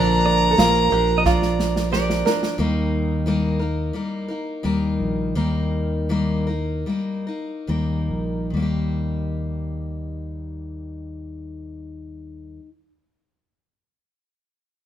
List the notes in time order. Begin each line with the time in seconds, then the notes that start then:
Already playing: A#1 A#2 D3 F3 A#3 D4 A#4 A#5
0.26 D5
0.51 A4
0.57 A#1 F3 A#3 D4 F4 A#4, snare
0.90 A#1 F3 A#3 D4 G4 A#4
1.18 D#5
1.25 F4 D5, kick, snare
1.42 snare
1.59 snare
1.76 snare
1.90 F3 A#3 D4 G4 A#4 D5, snare
2.10 snare
2.25 F3 A#3 D4 A#4, snare
2.43 snare
2.58 D#2 D#3 G3 A#3 D#4 A#4
3.26 D#3 G3 A#3 D#4 A#4
3.59 A#3 D#4 A#4
3.93 G3 A#3 D#4 A#4
4.28 A#3 D#4 A#4
4.63 D#2 D#3 G3 A#3 D#4 A#4
5.00 A#1
5.35 D#2 D#3 G3 A#3 D#4 A#4
6.09 D#3 G3 A#3 D#4 A#4
6.47 A#3 D#4 A#4
6.86 G3 A#3 D#4 A#4
7.27 A#3 D#4 A#4
7.67 D#2 D#3 G3 A#3 D#4 A#4
8.10 A#1
8.50 D#2 D#3 G3
8.57 A#3 D#4
8.62 G4